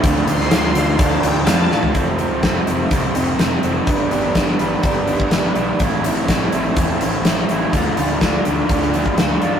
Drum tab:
HH |x-x-x-x-x-x-x---|x-x-x-x-x-x-x-x-|x-x-x-x-x-x-x-x-|x-x-x-x-x-x-x-x-|
SD |---oo-------o-o-|----o-------o---|----o-------o---|----o-------o---|
FT |---------------o|----------------|----------------|----------------|
BD |o-------o-------|o---o---o-------|o---o---o--o----|o---o---o-------|

HH |x-x-x-x-x-x-x-x-|
SD |----o----o--o---|
FT |----------------|
BD |o---o---o--o----|